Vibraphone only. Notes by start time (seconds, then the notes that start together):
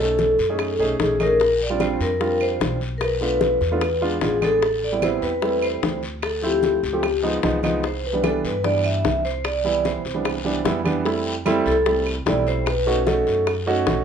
0.01 A4
1.02 G#4
1.23 A#4
1.63 D5
1.82 C5
2.02 A#4
2.42 C5
2.98 A#4
3.02 B4
3.24 B4
4.24 G#4
4.44 A4
4.84 D5
5.04 C5
5.23 B4
5.63 C5
6.24 A4
6.44 G4
7.86 C5
8.06 B4
8.26 A4
8.46 B4
8.64 D5
8.85 E5
9.25 C5
9.45 D5
9.66 D5
9.86 C5
11.67 A4
12.28 D5
12.48 C5
12.69 B4
13.08 A4